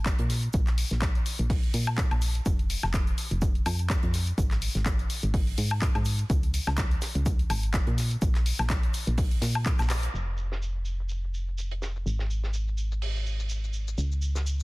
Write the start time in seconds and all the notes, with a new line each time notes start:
Already playing: G#1
0.06 kick, snare, clap, closed hi-hat, shaker
0.19 A#2, closed hi-hat
0.30 snare, open hi-hat, shaker
0.43 closed hi-hat
0.53 A#1, kick, closed hi-hat, shaker
0.67 snare, clap, closed hi-hat
0.78 open hi-hat, shaker
0.91 A#1, snare, closed hi-hat
1.02 kick, snare, clap, closed hi-hat, shaker
1.15 closed hi-hat
1.26 open hi-hat, shaker
1.39 A#1, closed hi-hat
1.50 kick, closed hi-hat, open hi-hat
1.63 closed hi-hat
1.74 A#2, open hi-hat, shaker
1.87 closed hi-hat, high woodblock
1.97 kick, snare, clap, closed hi-hat, shaker
2.11 A#1, closed hi-hat, high woodblock
2.22 open hi-hat, shaker
2.35 closed hi-hat
2.46 F1, kick, closed hi-hat, shaker
2.59 closed hi-hat
2.70 open hi-hat, shaker
2.83 F1, snare, closed hi-hat, high woodblock
2.94 kick, snare, clap, closed hi-hat, shaker
3.07 closed hi-hat
3.18 open hi-hat, shaker
3.31 F1, closed hi-hat
3.42 kick, closed hi-hat, shaker
3.55 closed hi-hat
3.66 F2, open hi-hat, high woodblock, shaker
3.79 closed hi-hat
3.90 kick, snare, clap, closed hi-hat, shaker
4.03 F2, closed hi-hat
4.13 snare, open hi-hat, shaker
4.27 closed hi-hat
4.38 G#1, kick, closed hi-hat, shaker
4.51 snare, clap, closed hi-hat
4.62 open hi-hat, shaker
4.75 G#1, snare, closed hi-hat
4.86 kick, snare, clap, closed hi-hat, shaker
4.99 closed hi-hat
5.10 open hi-hat, shaker
5.23 G#1, closed hi-hat
5.34 kick, closed hi-hat, open hi-hat
5.47 closed hi-hat
5.58 G#2, open hi-hat, shaker
5.71 closed hi-hat, high woodblock
5.82 kick, snare, clap, closed hi-hat, shaker
5.95 G#2, closed hi-hat, high woodblock
6.05 open hi-hat, shaker
6.19 closed hi-hat
6.30 C#2, kick, closed hi-hat, shaker
6.43 closed hi-hat
6.54 open hi-hat, shaker
6.67 C#2, snare, closed hi-hat, high woodblock
6.77 kick, snare, clap, closed hi-hat, shaker
6.91 closed hi-hat
7.02 snare, open hi-hat, shaker
7.15 C#2, closed hi-hat
7.26 kick, closed hi-hat, shaker
7.39 closed hi-hat
7.50 G#1, open hi-hat, high woodblock, shaker
7.63 closed hi-hat
7.73 kick, snare, clap, closed hi-hat, shaker
7.87 A#2, closed hi-hat
7.98 snare, open hi-hat, shaker
8.11 closed hi-hat
8.22 A#1, kick, closed hi-hat, shaker
8.35 snare, clap, closed hi-hat
8.46 open hi-hat, shaker
8.59 A#1, snare, closed hi-hat, high woodblock
8.70 kick, snare, clap, closed hi-hat, shaker
8.83 closed hi-hat
8.94 open hi-hat, shaker
9.07 A#1, closed hi-hat
9.18 kick, closed hi-hat, open hi-hat
9.31 closed hi-hat
9.42 A#2, snare, open hi-hat, shaker
9.55 closed hi-hat, high woodblock
9.66 kick, clap, closed hi-hat, shaker
9.79 A#1, snare, closed hi-hat, high woodblock, shaker
9.90 snare, clap, open hi-hat, shaker
10.03 closed hi-hat
10.14 F1, crash, shaker
10.28 shaker
10.37 shaker
10.52 snare, shaker
10.62 shaker
10.76 shaker
10.85 shaker
11.00 shaker
11.09 shaker
11.11 shaker
11.24 shaker
11.34 shaker
11.48 shaker
11.58 shaker
11.71 closed hi-hat, shaker
11.82 snare, shaker
11.96 shaker
12.06 G#1, shaker
12.19 snare, shaker
12.30 shaker
12.44 snare, shaker
12.54 shaker
12.68 shaker
12.78 shaker
12.92 shaker
13.02 open hi-hat, shaker
13.16 shaker
13.26 shaker
13.40 shaker
13.49 shaker
13.64 shaker
13.73 shaker
13.88 shaker
13.98 C#2, shaker
14.12 shaker
14.22 shaker
14.35 snare, shaker
14.46 shaker
14.60 shaker